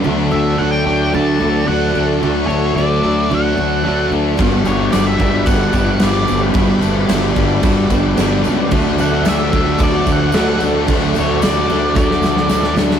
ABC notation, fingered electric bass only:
X:1
M:4/4
L:1/8
Q:1/4=111
K:D
V:1 name="Fingered electric bass" clef=bass
D,, D,, D,, D,, D,, D,, D,, D,, | D,, D,, D,, D,, D,, D,, D,, D,, | G,,, G,,, G,,, G,,, G,,, G,,, G,,, G,,, | G,,, G,,, G,,, G,,, G,,, G,,, G,,, C,, |
D,, D,, D,, D,, D,, D,, D,, D,, | D,, D,, D,, D,, D,, D,, D,, D,, |]